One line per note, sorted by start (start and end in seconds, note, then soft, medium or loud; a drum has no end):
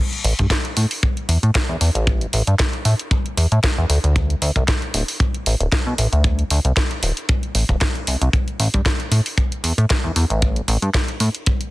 0.13 closed hi-hat soft
0.24 0.34 A1 loud
0.24 open hi-hat loud
0.39 0.47 G2 medium
0.39 kick medium
0.39 closed hi-hat medium
0.50 kick loud
0.50 snare loud
0.50 closed hi-hat medium
0.65 closed hi-hat soft
0.77 0.86 A2 medium
0.77 open hi-hat loud
0.91 open hi-hat medium
1.03 kick loud
1.03 closed hi-hat medium
1.17 closed hi-hat soft
1.29 1.38 E2 medium
1.29 open hi-hat loud
1.43 1.51 A2 loud
1.43 closed hi-hat medium
1.55 kick loud
1.55 snare loud
1.55 closed hi-hat medium
1.69 1.77 E2 loud
1.81 1.90 E2 medium
1.81 open hi-hat loud
1.95 2.26 A1 medium
1.95 closed hi-hat medium
2.07 kick loud
2.07 closed hi-hat medium
2.21 closed hi-hat soft
2.33 2.42 A1 loud
2.33 open hi-hat loud
2.47 2.55 G2 medium
2.47 closed hi-hat soft
2.59 kick loud
2.59 snare loud
2.59 closed hi-hat medium
2.73 closed hi-hat soft
2.85 2.94 A2 medium
2.85 open hi-hat loud
2.99 closed hi-hat medium
3.11 kick loud
3.11 closed hi-hat medium
3.26 closed hi-hat soft
3.37 3.47 E2 medium
3.37 open hi-hat loud
3.52 3.59 A2 loud
3.52 closed hi-hat soft
3.64 kick loud
3.64 snare loud
3.64 closed hi-hat medium
3.78 3.85 E2 medium
3.90 3.99 D2 medium
3.90 open hi-hat loud
4.04 4.35 D2 medium
4.04 closed hi-hat soft
4.16 kick loud
4.16 closed hi-hat medium
4.30 closed hi-hat soft
4.42 4.51 D2 loud
4.42 open hi-hat loud
4.56 4.64 C2 medium
4.56 kick medium
4.56 closed hi-hat soft
4.68 kick loud
4.68 snare loud
4.68 closed hi-hat medium
4.82 closed hi-hat soft
4.94 5.03 D1 medium
4.94 open hi-hat loud
5.08 open hi-hat medium
5.20 kick loud
5.20 closed hi-hat medium
5.34 closed hi-hat soft
5.46 5.55 A1 medium
5.46 open hi-hat loud
5.60 5.68 D1 loud
5.60 closed hi-hat soft
5.72 kick loud
5.72 snare loud
5.72 closed hi-hat medium
5.87 5.94 B2 loud
5.98 6.07 A1 medium
5.98 open hi-hat loud
6.12 6.44 D2 medium
6.12 closed hi-hat soft
6.24 kick loud
6.24 closed hi-hat medium
6.39 closed hi-hat soft
6.50 6.60 D2 loud
6.50 open hi-hat loud
6.65 6.72 C2 medium
6.65 closed hi-hat soft
6.77 kick loud
6.77 snare loud
6.77 closed hi-hat medium
6.91 closed hi-hat soft
7.03 7.12 D1 medium
7.03 open hi-hat loud
7.17 closed hi-hat soft
7.29 kick loud
7.29 closed hi-hat medium
7.43 closed hi-hat soft
7.55 7.64 A1 medium
7.55 open hi-hat loud
7.69 7.77 D1 loud
7.69 kick medium
7.69 closed hi-hat soft
7.81 kick loud
7.81 snare loud
7.81 closed hi-hat medium
7.95 closed hi-hat soft
8.07 8.16 C2 medium
8.07 open hi-hat loud
8.21 8.29 C2 loud
8.21 closed hi-hat soft
8.33 kick loud
8.33 closed hi-hat medium
8.48 closed hi-hat soft
8.59 8.69 A1 loud
8.59 open hi-hat loud
8.74 8.81 G2 medium
8.74 kick medium
8.74 closed hi-hat soft
8.86 kick loud
8.86 snare loud
8.86 closed hi-hat medium
9.00 closed hi-hat soft
9.11 9.21 A2 medium
9.11 open hi-hat loud
9.26 open hi-hat medium
9.38 kick loud
9.38 closed hi-hat medium
9.52 closed hi-hat soft
9.64 9.73 E2 medium
9.64 open hi-hat loud
9.78 9.86 A2 loud
9.78 closed hi-hat soft
9.90 kick loud
9.90 snare loud
9.90 closed hi-hat medium
10.04 10.12 E2 medium
10.16 10.25 E2 medium
10.16 open hi-hat loud
10.30 10.61 A1 medium
10.30 closed hi-hat soft
10.42 kick loud
10.42 closed hi-hat medium
10.56 closed hi-hat soft
10.68 10.77 A1 loud
10.68 open hi-hat loud
10.82 10.90 G2 medium
10.82 closed hi-hat soft
10.94 kick loud
10.94 snare loud
10.94 closed hi-hat medium
11.08 closed hi-hat soft
11.20 11.29 A2 medium
11.20 open hi-hat loud
11.35 closed hi-hat soft
11.46 kick loud
11.46 closed hi-hat medium
11.61 closed hi-hat soft